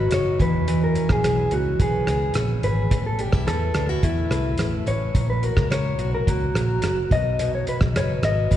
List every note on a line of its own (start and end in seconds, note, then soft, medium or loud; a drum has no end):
0.00 0.45 B2 medium
0.00 0.39 F#3 medium
0.00 0.11 D#4 medium
0.00 0.45 F#4 medium
0.00 0.13 B4 medium
0.11 0.41 F#1 medium
0.11 0.45 D#4 medium
0.11 0.39 C#5 medium
0.11 cross-stick medium
0.11 closed hi-hat medium
0.39 0.96 E2 medium
0.39 0.67 E3 medium
0.39 0.83 B4 medium
0.39 kick medium
0.39 closed hi-hat soft
0.67 3.22 E3 medium
0.67 closed hi-hat medium
0.84 1.11 A#4 medium
0.95 1.50 C#4 medium
0.95 closed hi-hat soft
1.09 1.21 A#1 medium
1.09 1.54 G#4 medium
1.09 kick medium
1.09 cross-stick medium
1.24 1.46 B1 medium
1.24 2.07 G#4 medium
1.24 cross-stick medium
1.24 closed hi-hat medium
1.51 1.74 C#2 medium
1.51 2.35 C#4 medium
1.51 1.81 F#4 medium
1.51 closed hi-hat soft
1.80 2.02 B1 medium
1.80 4.02 B3 medium
1.80 2.33 G#4 medium
1.80 kick medium
1.80 closed hi-hat medium
2.07 2.30 C#2 medium
2.07 2.62 G#4 medium
2.07 cross-stick medium
2.07 closed hi-hat soft
2.34 2.58 A#1 medium
2.34 2.97 C#4 medium
2.34 cross-stick medium
2.34 closed hi-hat medium
2.63 2.86 G#1 medium
2.63 2.97 G#4 medium
2.63 3.06 B4 medium
2.63 closed hi-hat soft
2.91 3.25 A1 loud
2.91 5.14 A2 medium
2.91 kick medium
2.91 closed hi-hat medium
3.06 3.20 A4 medium
3.19 3.33 D4 medium
3.19 3.47 G4 medium
3.19 closed hi-hat medium
3.32 3.44 C2 medium
3.32 3.74 E4 soft
3.32 kick medium
3.32 cross-stick medium
3.47 3.70 E2 medium
3.47 3.86 A4 medium
3.47 4.29 B4 medium
3.47 cross-stick medium
3.47 closed hi-hat medium
3.74 3.98 D2 medium
3.74 3.89 D4 medium
3.74 cross-stick medium
3.74 closed hi-hat soft
3.89 4.58 E4 soft
3.89 4.04 F#4 medium
4.03 4.26 E2 medium
4.03 5.20 A3 medium
4.03 4.90 E4 medium
4.03 kick medium
4.03 closed hi-hat medium
4.30 4.53 C2 medium
4.30 4.85 B4 medium
4.30 cross-stick medium
4.30 closed hi-hat soft
4.58 4.81 A1 medium
4.58 5.20 E4 medium
4.58 cross-stick medium
4.58 closed hi-hat medium
4.86 5.09 A1 medium
4.86 5.20 B4 medium
4.86 5.29 C#5 medium
4.86 closed hi-hat soft
5.15 5.48 A#1 medium
5.15 7.11 A#2 medium
5.15 kick medium
5.15 closed hi-hat medium
5.30 5.44 B4 medium
5.43 5.99 F#4 medium
5.43 5.71 A#4 medium
5.43 closed hi-hat soft
5.57 5.68 C#2 medium
5.57 kick loud
5.57 cross-stick medium
5.70 5.93 C#2 medium
5.70 6.54 A#4 medium
5.70 6.14 C#5 medium
5.70 cross-stick medium
5.70 closed hi-hat medium
5.99 6.21 B1 medium
5.99 6.84 F#4 medium
5.99 closed hi-hat soft
6.15 6.28 A#4 medium
6.27 6.49 C#2 medium
6.27 7.17 A#3 medium
6.27 7.14 F#4 medium
6.27 kick medium
6.27 closed hi-hat medium
6.54 6.77 A#1 medium
6.54 7.17 A#4 medium
6.54 cross-stick medium
6.54 closed hi-hat soft
6.82 7.05 F#1 medium
6.82 7.68 F#4 medium
6.82 cross-stick medium
6.82 closed hi-hat medium
7.11 7.67 B1 medium
7.11 7.39 B2 medium
7.11 7.54 D#5 loud
7.11 kick medium
7.11 closed hi-hat soft
7.39 8.57 B2 medium
7.39 closed hi-hat medium
7.55 7.68 C#5 medium
7.67 8.22 F#4 medium
7.67 7.76 B4 medium
7.67 closed hi-hat soft
7.81 7.92 B1 medium
7.81 kick medium
7.81 cross-stick medium
7.95 8.17 F#1 medium
7.95 8.57 B4 medium
7.95 8.24 C#5 loud
7.95 cross-stick medium
7.95 closed hi-hat medium
8.23 8.45 G#1 medium
8.23 8.57 F#4 medium
8.23 8.57 D#5 loud
8.23 cross-stick medium
8.23 closed hi-hat soft
8.51 8.57 F#1 loud
8.51 8.57 B3 medium
8.51 kick medium
8.51 closed hi-hat medium